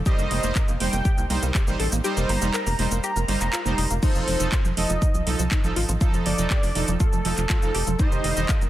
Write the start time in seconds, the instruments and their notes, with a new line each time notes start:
0.06 supersaw synth G3 D#4 C5, synth arpeggio sound G4, analog synth lead D#5, kick, closed hi-hat, cabasa
0.19 analog synth bass F1, synth arpeggio sound A#3, closed hi-hat, cabasa
0.31 analog synth bass F1, synth arpeggio sound A#3, open hi-hat
0.43 analog synth bass F1, supersaw synth G3 D#4 C5, synth arpeggio sound A#3, closed hi-hat, cabasa
0.55 synth arpeggio sound A#4, kick, clap, closed hi-hat, cabasa
0.68 analog synth bass F1, synth arpeggio sound A#3, closed hi-hat, cabasa
0.80 analog synth bass F1, supersaw synth G3 D#4 C5, synth arpeggio sound A#3, analog synth lead G5, open hi-hat
0.93 analog synth bass F1, synth arpeggio sound A#3, closed hi-hat, cabasa
1.05 synth arpeggio sound G4, kick, closed hi-hat, cabasa
1.18 analog synth bass C2, synth arpeggio sound A#3, closed hi-hat, cabasa
1.30 analog synth bass C2, supersaw synth G3 D#4 C5, synth arpeggio sound A#3, open hi-hat
1.42 analog synth bass C2, synth arpeggio sound A#3, closed hi-hat, cabasa
1.55 synth arpeggio sound G4, kick, clap, closed hi-hat, cabasa
1.67 analog synth bass A1, supersaw synth G3 D#4 C5, synth arpeggio sound A#3, closed hi-hat, cabasa
1.80 analog synth bass A1, synth arpeggio sound A4, open hi-hat
1.92 analog synth bass A1, synth arpeggio sound A#3, closed hi-hat, cabasa
2.04 supersaw synth G3 D#4 C5, synth arpeggio sound G4, closed hi-hat, cabasa
2.17 analog synth bass F1, synth arpeggio sound A#3, closed hi-hat, cabasa
2.29 analog synth bass G1, synth arpeggio sound A#3, analog synth lead A#5, open hi-hat
2.42 analog synth bass F1, supersaw synth G3 D#4 C5, synth arpeggio sound A#3, closed hi-hat, cabasa
2.54 synth arpeggio sound A#4, clap, closed hi-hat, cabasa
2.67 analog synth bass F1, synth arpeggio sound A#3, open hi-hat, cabasa
2.79 analog synth bass F1, supersaw synth G3 D#4 C5, synth arpeggio sound A#3, open hi-hat
2.91 analog synth bass F1, synth arpeggio sound A#3, closed hi-hat, cabasa
3.04 synth arpeggio sound G4, analog synth lead A#5, closed hi-hat, cabasa
3.16 analog synth bass F1, synth arpeggio sound A#3, closed hi-hat, cabasa
3.28 analog synth bass G1, supersaw synth G3 D#4 C5, synth arpeggio sound A#3, open hi-hat
3.41 analog synth bass F1, synth arpeggio sound A#3, clap, closed hi-hat, cabasa
3.53 synth arpeggio sound F4, clap, closed hi-hat, cabasa
3.66 analog synth bass F1, supersaw synth G3 D#4 C5, synth arpeggio sound A#3, closed hi-hat, cabasa
3.78 analog synth bass F1, synth arpeggio sound D#4, open hi-hat
3.91 analog synth bass F1, synth arpeggio sound A#3, closed hi-hat, cabasa
4.03 supersaw synth F3 D#4 A4, synth arpeggio sound D#4, analog synth lead C5, kick, closed hi-hat, crash, cabasa
4.15 analog synth bass F1, synth arpeggio sound F3, closed hi-hat, cabasa
4.28 analog synth bass F1, synth arpeggio sound F3, open hi-hat
4.40 analog synth bass F1, supersaw synth F3 D#4 A4, synth arpeggio sound F3, closed hi-hat, cabasa
4.52 synth arpeggio sound F4, kick, clap, closed hi-hat, cabasa
4.65 analog synth bass F1, synth arpeggio sound F3, closed hi-hat, cabasa
4.77 analog synth bass F1, synth arpeggio sound F3, supersaw synth F3 D#4 A4, analog synth lead D#5, open hi-hat
4.90 analog synth bass F1, synth arpeggio sound F3, closed hi-hat, cabasa
5.02 synth arpeggio sound D#4, kick, closed hi-hat, cabasa
5.14 analog synth bass C2, synth arpeggio sound F3, closed hi-hat, cabasa
5.27 analog synth bass C2, synth arpeggio sound F3, supersaw synth F3 D#4 A4, open hi-hat
5.39 analog synth bass C2, synth arpeggio sound F3, closed hi-hat, cabasa
5.51 synth arpeggio sound D#4, kick, clap, closed hi-hat, cabasa
5.64 analog synth bass A1, supersaw synth F3 D#4 A4, synth arpeggio sound F3, closed hi-hat, cabasa
5.76 analog synth bass A1, synth arpeggio sound F4, open hi-hat
5.89 analog synth bass A1, synth arpeggio sound F3, closed hi-hat, cabasa
6.01 supersaw synth F3 D#4 A4, synth arpeggio sound F4, kick, closed hi-hat, cabasa
6.14 analog synth bass F1, synth arpeggio sound F3, closed hi-hat, cabasa
6.26 analog synth bass G1, synth arpeggio sound F3, analog synth lead D5, open hi-hat
6.38 analog synth bass F1, supersaw synth F3 D#4 A4, synth arpeggio sound F3, cabasa
6.50 synth arpeggio sound G4, kick, clap, closed hi-hat, cabasa
6.63 analog synth bass F1, synth arpeggio sound F3, open hi-hat, cabasa
6.75 analog synth bass F1, supersaw synth F3 D#4 A4, synth arpeggio sound F3, open hi-hat
6.88 analog synth bass F1, synth arpeggio sound F3, closed hi-hat, cabasa
7.00 synth arpeggio sound F4, analog synth lead A4, kick, closed hi-hat, cabasa
7.13 analog synth bass F1, synth arpeggio sound F3, closed hi-hat, cabasa
7.25 analog synth bass F1, supersaw synth F3 D#4 A4, synth arpeggio sound F3, open hi-hat
7.37 analog synth bass F1, synth arpeggio sound F3, clap, closed hi-hat, cabasa
7.50 synth arpeggio sound F4, kick, clap, closed hi-hat, cabasa
7.62 analog synth bass F1, supersaw synth F3 D#4 A4, synth arpeggio sound F3, closed hi-hat, cabasa
7.75 analog synth bass F1, synth arpeggio sound G4, open hi-hat
7.87 analog synth bass F1, synth arpeggio sound F3, closed hi-hat, cabasa
7.99 supersaw synth G3 D#4 C5, synth arpeggio sound D#4, analog synth lead D#5, kick, closed hi-hat, cabasa
8.12 analog synth bass F1, synth arpeggio sound D#3, closed hi-hat, cabasa
8.24 analog synth bass F1, synth arpeggio sound D#3, open hi-hat
8.37 analog synth bass F1, synth arpeggio sound D#3, supersaw synth G3 D#4 C5, closed hi-hat, cabasa
8.49 synth arpeggio sound F4, kick, clap, closed hi-hat, cabasa
8.62 analog synth bass F1, synth arpeggio sound D#3, closed hi-hat, cabasa